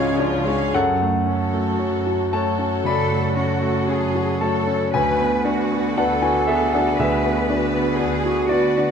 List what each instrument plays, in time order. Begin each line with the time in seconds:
Already playing: double bass section C#2, grand piano G#2 C#4 F4 F#4, trombone section C#3 G#3, cello section C#3, viola section G#3 C#4, bassoon G#3, french horn section C#4 F4, clarinet F4, violin section G#4 F5, trumpet section G#4, oboe C#5
0.17 viola section F3 F4, grand piano D4, violin section F4 C#5
0.46 viola section G#3 C#4, grand piano C#4, violin section G#4 F5
0.74 grand piano F#2 A4 F#5, double bass section F#2
1.02 grand piano A3
1.26 grand piano C#4, viola section F#4, violin section A4 C#5
1.54 grand piano A3
1.79 double bass section F#2, grand piano C#4
2.07 grand piano F#4
2.33 grand piano A3 C#5 A5, viola section F#4, violin section A4 C#5
2.59 grand piano C#4
2.84 double bass section F#2, grand piano C#3 D5 B5, cello section A4
3.11 grand piano A3
3.37 grand piano C#4, cello section F#4, viola section F#4, violin section A4 C#5
3.62 grand piano A3
3.88 double bass section F#2, grand piano C#4, cello section G#4
4.15 grand piano F#4
4.40 grand piano A3 C#5 A5, viola section F#4, cello section A4, violin section A4
4.44 violin section C#5
4.67 grand piano C#4
4.92 double bass section D2, grand piano D2 B4 G#5, viola section F#4, violin section B4 D5, cello section B4
5.20 grand piano B3
5.44 grand piano D4, cello section F#4, viola section F#4, violin section B4 D5
5.72 grand piano B3
5.96 double bass section D2, grand piano D4 B4 F#5, cello section A4
6.22 grand piano F#4 B4 G#5
6.47 grand piano B3 G#4 E5, viola section F#4, violin section B4 D5
6.73 grand piano D4 A4 F#5
6.97 double bass section D2, grand piano D2 G#4 E5, cello section B4
7.25 grand piano B3
7.46 grand piano D4, viola section F#4, violin section B4 D5
7.74 grand piano B3
7.97 double bass section D2, grand piano D4, cello section G#4
8.26 grand piano F#4
8.47 cello section F#4, viola section F#4, grand piano F#4 D5, violin section B4 D5
8.52 grand piano B3
8.78 grand piano D4